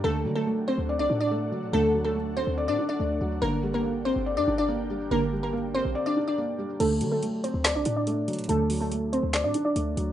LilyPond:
<<
  \new Staff \with { instrumentName = "Ambient pad" } { \time 4/4 \key d \phrygian \tempo 4 = 142 << { <fis' a' fis''>1~ | <fis' a' fis''>1 | <g' bes' g''>1~ | <g' bes' g''>1 |
r1 | r1 | } \\ { d'1~ | d'1~ | d'1~ | d'1 |
r1 | r1 | } >> }
  \new Staff \with { instrumentName = "Synth pluck" } { \time 4/4 \key d \phrygian <a a'>8. <a a'>8. <c' c''>8. <d' d''>8 <d' d''>4~ <d' d''>16 | <a a'>8. <a a'>8. <c' c''>8. <d' d''>8 <d' d''>4~ <d' d''>16 | <bes bes'>8. <bes bes'>8. <c' c''>8. <d' d''>8 <d' d''>4~ <d' d''>16 | <bes bes'>8. <bes bes'>8. <c' c''>8. <d' d''>8 <d' d''>4~ <d' d''>16 |
<a a'>8. <a a'>8. <c' c''>8. <d' d''>8 <d' d''>4~ <d' d''>16 | <a a'>8. <a a'>8. <c' c''>8. <d' d''>8 <d' d''>4~ <d' d''>16 | }
  \new Staff \with { instrumentName = "Felt piano" } { \time 4/4 \key d \phrygian d8 fis8 a4 d''8 d'8 a8 fis8 | d8 fis8 a4 d''8 d'8 a8 fis8 | d8 g8 bes4 d''8 d'8 bes8 g8 | d8 g8 bes4 d''8 d'8 bes8 g8 |
d8 fis8 a4 d''8 d'8 a8 fis8 | d8 fis8 a4 d''8 d'8 a8 fis8 | }
  \new Staff \with { instrumentName = "808-style bass" } { \clef bass \time 4/4 \key d \phrygian d,8 d8 r8. d,8 c,16 a,4 d16 a,16 | d,4.~ d,16 d,8 a,16 r8 d,8 d,8 | g,,4.~ g,,16 g,,8 g,16 g,,4 fis,,16 g,,16 | g,,4.~ g,,16 bes,,16 r2 |
d,8 d8 r8. d,8 c,16 a,4 d16 a,16 | d,4.~ d,16 d,8 a,16 r8 d,8 d,8 | }
  \new DrumStaff \with { instrumentName = "Drums" } \drummode { \time 4/4 r4 r4 r4 r4 | r4 r4 r4 r4 | r4 r4 r4 r4 | r4 r4 r4 r4 |
<cymc hh>8 hh8 hh8 hh8 <hc hh sn>8 hh8 hh8 hh32 hh32 hh32 hh32 | hh8 hho8 hh8 hh8 <hc hh sn>8 hh8 hh8 hh8 | }
>>